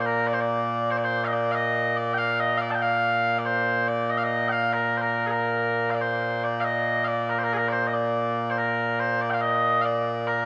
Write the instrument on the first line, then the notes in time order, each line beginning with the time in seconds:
bagpipes
Already playing: A#2 A#3
0.00 C5
0.06 A#4
0.27 D5
0.33 C5
0.41 D5
0.91 C5
0.97 D5
1.04 C5
1.24 D#5 F5
1.33 D5
1.51 D#5 F5
1.96 D5
2.13 G5
2.18 F5
2.40 D#5
2.57 D5 F5
2.71 G5 A5
2.82 F5
3.38 D5
3.45 C5
3.88 D5
4.10 D#5
4.17 F5
4.24 D#5
4.49 F5 G5
4.73 A#4
4.98 A#4 C5
5.27 G#4
5.31 A#4
5.90 F5
5.95 D5
6.01 C5
6.44 D5
6.60 F5
6.64 D#5
7.04 D5 F5
7.30 A#4
7.39 C5
7.44 A#4
7.53 G#4 A#4
7.69 C5 D5
7.87 D#5
7.93 D5
8.50 C5
8.58 A#4
9.00 C5
9.21 D5
9.30 F5 G5
9.41 D#5
9.81 D5 F5
10.27 A#4